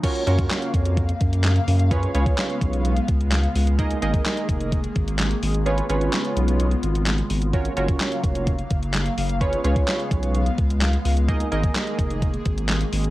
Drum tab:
CC |x---------------|----------------|----------------|----------------|
HH |xxxxxxxxxxxxxxox|xxxxxxxxxxxxxxox|xxxxxxxxxxxxxxox|xxxxxxxxxxxxxxox|
CP |----x-------x---|----x-------x---|----x-------x---|----x-------x---|
SD |----o-------o---|----o-------o---|----o-------o---|----o-------o---|
BD |o--o--o-o-o-----|o--o--o---o-----|o--o--o-o-o-----|----------------|

CC |----------------|----------------|----------------|
HH |xxxxxxxxxxxxxxox|xxxxxxxxxxxxxxox|xxxxxxxxxxxxxxox|
CP |----x-------x---|----x-------x---|----x-------x---|
SD |----o-------o---|----o-------o---|----o-------o---|
BD |o--o--o-o-o-----|o--o--o---o-----|o--o--o-o-o-----|